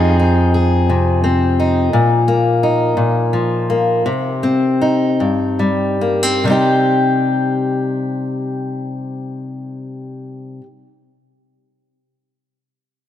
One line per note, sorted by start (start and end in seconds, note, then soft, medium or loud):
0.00 1.88 F2 medium
0.00 3.32 F3 medium
0.00 1.22 C4 medium
0.00 0.19 D#4 medium
0.00 0.53 G#4 medium
0.19 1.59 D#4 medium
0.54 1.88 G#4 medium
0.89 1.92 C3 medium
1.24 1.88 C4 medium
1.60 2.63 D#4 soft
1.93 2.96 A#2 medium
2.28 3.69 A#3 medium
2.63 4.81 D#4 soft
2.97 4.01 A#2 medium
3.33 4.06 F3 medium
3.70 4.06 A#3 soft
4.06 5.20 C3 medium
4.43 6.01 C4 soft
4.81 6.39 D#4 soft
5.20 6.44 G2 medium
5.59 6.39 G3 medium
6.01 6.23 A#3 soft
6.23 6.44 C4 soft
6.44 10.59 C3 medium
6.44 10.61 G3 soft
6.44 10.63 C4 soft
6.50 10.65 D#4 soft
6.50 10.67 G4 medium